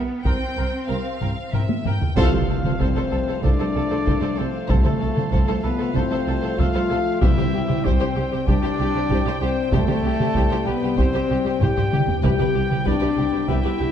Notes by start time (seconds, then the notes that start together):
Already playing: B3
0.24 C2 C4 A#4 G5, taiko
0.57 C2 A#4 G5
0.89 C2 A#4 C5 F5 G5
1.21 C2 A#4 G5, taiko low-mid
1.53 C2 A#4 E5 G5, taiko low-mid
1.69 taiko high
1.85 C2 A#4 G5, taiko low-mid
2.01 taiko low
2.16 C2 C3 F3 A3 F4 A4 C5 F5, taiko, impact
2.33 C2 A4 C5, taiko mid
2.49 C2 A4
2.64 C2 A4 C5, taiko mid
2.80 C2 C4 A4 C5, taiko
2.96 C2 A4 C5
3.11 C2 A4
3.28 C2 A4 C5
3.43 C2 D4 A4 C5 D5, taiko
3.59 C2 A4 C5
3.75 C2 A4
3.90 C2 A4 C5
4.06 C2 A4 C5, taiko
4.21 C2 A4 C5
4.36 C2 C4 A4 C5
4.68 C2 A3 A4 C5, taiko
4.84 C2 A4 C5, taiko mid
5.00 C2 A4
5.16 C2 A4 C5, taiko mid
5.31 C2 A4 C5, taiko
5.48 C2 A4 C5
5.63 C2 B3 A4 B4
5.79 C2 A4 C5
5.94 C2 C4 A4 C5, taiko
6.11 C2 A4 C5
6.27 C2 A4
6.42 C2 A4 C5
6.57 C2 F4 A4 C5 F5, taiko
6.75 C2 A4 C5
6.90 C2 A4
7.21 C2 C3 G3 E4 G4 C5 E5 G5, taiko
7.37 C2 G4 C5, taiko mid
7.53 C2 G4
7.68 C2 G4 C5, taiko mid
7.85 C2 C4 G4 C5, taiko
8.00 C2 G4 C5
8.16 C2 G4
8.32 C2 G4 C5
8.47 C2 D4 G4 C5 D5, taiko
8.63 C2 G4 C5
8.79 C2 G4
8.95 C2 G4 C5
9.10 C2 G4 C5, taiko
9.26 C2 G4 C5
9.41 C2 C4 G4 C5
9.72 C2 A3 G4 A4 C5, taiko
9.88 C2 G4 C5, taiko mid
10.04 C2 G4
10.20 C2 G4 C5, taiko mid
10.35 C2 G4 C5, taiko
10.51 C2 G4 C5
10.66 C2 B3 G4 B4
10.82 C2 G4 C5
10.96 C2 C4 G4 C5, taiko
11.13 C2 G4 C5
11.29 C2 G4
11.45 C2 G4 C5
11.61 C2 G4 C5 G5, taiko low-mid
11.76 C2 G4 C5, taiko low-mid
11.92 C2 G4, taiko mid
12.08 taiko low
12.23 C2 C3 G3 B3 G4 B4 G5, taiko
12.39 C2 G4 B4, taiko mid
12.55 C2 G4
12.70 C2 G4 B4, taiko mid
12.85 C2 D4 G4 B4 D5, taiko
13.01 C2 G4 B4
13.16 C2 G4
13.32 C2 G4 B4
13.48 C2 E4 G4 B4 E5, taiko
13.64 C2 G4 B4
13.79 C2 G4